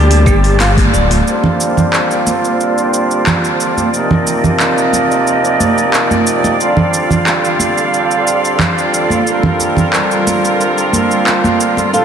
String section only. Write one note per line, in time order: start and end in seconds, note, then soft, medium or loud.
0.00 1.24 G3 medium
0.00 1.24 A#3 medium
0.00 1.22 C4 medium
0.00 1.24 A5 medium
1.26 3.91 A#3 medium
1.26 3.91 F4 medium
1.26 3.91 C5 medium
1.26 9.22 D5 medium
3.94 6.58 C4 medium
3.94 6.58 G4 medium
3.94 6.58 D#5 medium
6.60 12.05 F4 medium
6.60 11.89 A4 medium
6.60 9.24 F5 medium
9.26 11.90 G3 medium
9.26 11.90 A#4 medium
11.92 12.05 A#2 medium
11.92 12.05 F3 medium
11.92 12.05 C4 medium